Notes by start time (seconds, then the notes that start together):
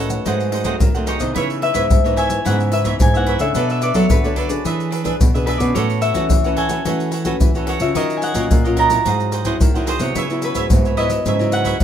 Already playing: A2 D#3 A3 C#4 D#4 F#4 A4 B4 C#5 D#5 F#5
0.10 A4 C#5 F#5, pandeiro, maracas
0.25 G#2 F#3 A3 C4 D#4 G#4 C5 F#5, pandeiro, maracas, surdo
0.40 pandeiro, maracas
0.52 D#4 G#4 C5 F#5, pandeiro
0.64 F#3 A3 C4 D#4 G#4 C5 F#5, pandeiro, maracas, surdo
0.80 D#3, pandeiro, maracas, surdo
0.94 F#3 A3 C4 G#4 C5 F#5, pandeiro, maracas
1.07 D#4 G#4 C5 C#5 F#5, pandeiro, maracas
1.20 C3 E3 B3 D#4 D#5, pandeiro, maracas, surdo
1.35 C#3 E4 B4 C#5 E5, pandeiro, maracas, surdo
1.50 pandeiro, maracas
1.61 E4 B4 C#5 E5, pandeiro
1.74 G#2 E3 B3 D#4 E4 B4 C#5 E5, pandeiro, maracas, surdo
1.90 G#2, pandeiro, maracas, surdo
2.04 E3 B3 D#4 B4 C#5 E5, pandeiro, maracas
2.16 E4 B4 C#5 E5 G#5, pandeiro, maracas, surdo
2.30 B4 C#5 E5, pandeiro, maracas
2.45 G#2 C#3 E3 B3 D#4 E4 B4 C#5 E5 F#5, pandeiro, maracas, surdo
2.60 pandeiro, maracas
2.71 E4 B4 C#5 E5, pandeiro
2.84 E3 B3 D#4 E4 B4 C#5 E5, pandeiro, maracas, surdo
3.00 G#2 G#5, pandeiro, maracas, surdo
3.14 E3 B3 D#4 B4 C#5 E5 F#5, pandeiro, maracas
3.26 E4 B4 C#5 E5, pandeiro
3.39 C#3 D4 A4 C#5 E5, pandeiro, maracas, surdo
3.55 B2 B3 D4 A4 B4 D5, pandeiro, maracas, surdo
3.70 E5, pandeiro, maracas
3.82 D4 A4 B4 D5, pandeiro, maracas
3.94 F#3 D4 A4 B4 C#5 D5, pandeiro, maracas, surdo
4.10 D3 F#3 B4, pandeiro, maracas, surdo
4.24 D4 A4 B4 C#5 D5, pandeiro, maracas
4.36 D4 A4 B4 D5, pandeiro, surdo
4.49 D4 G#4 A4 B4 D5, pandeiro, maracas
4.65 E3 D4 G#4 B4 E5, pandeiro, maracas, surdo
4.80 pandeiro, maracas
4.91 D4 G#4 B4 E5, pandeiro
5.04 D4 G#4 B4 E5, pandeiro, maracas, surdo
5.20 B2, pandeiro, maracas, surdo
5.34 D4 G#4 B4 E5, pandeiro, maracas
5.46 D4 G#4 B4 E5, pandeiro
5.58 B2 C#4 F#4 B4 D5, pandeiro, maracas, surdo
5.75 A2 A3 F#4 A4 C#5 F#5, pandeiro, maracas, surdo
5.90 pandeiro, maracas
6.01 F#4 A4 C#5 E5 F#5, pandeiro, maracas
6.14 E3 C#4 F#4 A4 B4 C#5 F#5, pandeiro, maracas, surdo
6.30 E3, pandeiro, maracas, surdo
6.44 C#4 F#4 A4 B4 C#5 F#5, pandeiro, maracas
6.56 F#4 A4 C#5 F#5 G#5, pandeiro, surdo
6.69 C#4 F#4 A4 B4 C#5 F#5, pandeiro, maracas
6.85 E3 A3 C#4 F#4 A4 B4 C#5 F#5, pandeiro, maracas, surdo
7.00 pandeiro, maracas
7.11 F#4 A4 C#5 F#5, pandeiro, maracas
7.25 C#4 F#4 A4 B4 C#5 F#5, pandeiro, maracas, surdo
7.40 E3, pandeiro, maracas, surdo
7.55 C#4 F#4 A4 B4 C#5 F#5, pandeiro, maracas, surdo
7.67 F#4 A4 C#5 F#5, pandeiro
7.80 C#3 F#3 C#4 F4 E5, pandeiro, maracas, surdo
7.95 D#3 F#4 A#4 C#5 D#5, pandeiro, maracas, surdo
8.10 pandeiro, maracas
8.17 G#5
8.21 F#4 A#4 C#5 D#5 F#5, pandeiro, maracas
8.34 A#2 F#3 C#4 F4 F#4 A#4 C#5 D#5, pandeiro, maracas, surdo
8.51 A#2, pandeiro, maracas, surdo
8.64 F#3 C#4 F4 A#4 C#5 D#5, pandeiro, maracas
8.76 F#4 A#4 C#5 D#5 A#5, pandeiro, surdo
8.90 F#3 C4 E4 A#4 C#5 D#5, pandeiro, maracas
9.05 G#2 F#4 G#4 C5 F#5, pandeiro, maracas, surdo
9.20 pandeiro, maracas
9.32 F#4 G#4 C5 F#5, pandeiro, maracas
9.45 F#3 C4 E4 F#4 G#4 C5 F#5, pandeiro, maracas, surdo
9.61 D#3, pandeiro, maracas, surdo
9.74 F#3 C4 E4 G#4 C5 F#5, pandeiro, maracas, surdo
9.87 F#4 G#4 C5 F#5, pandeiro, maracas
9.99 C3 F#3 B3 E4 C#5, pandeiro, maracas, surdo
10.15 C#3 E4 B4 C#5 E5, pandeiro, maracas, surdo
10.30 F#3 B3 E4, pandeiro, maracas
10.42 E4 B4 C#5 E5, pandeiro, maracas
10.55 G#2 E4 B4 C#5 E5, pandeiro, maracas, surdo
10.70 G#2 F#3 B3 E4, pandeiro, maracas, surdo
10.85 B4 C#5 E5, pandeiro, maracas
10.97 F#3 B3 E4 B4 C#5 D#5 E5, pandeiro, surdo
11.10 B4 C#5 E5, pandeiro, maracas
11.26 G#2 C#3 E4 B4 C#5 E5, pandeiro, maracas, surdo
11.39 F#3 B3 E4, pandeiro, maracas
11.52 E4 B4 C#5 E5 F#5, pandeiro, maracas
11.65 E4 B4 C#5 E5, pandeiro, maracas, surdo
11.80 G#2 F#3 B3, pandeiro, maracas, surdo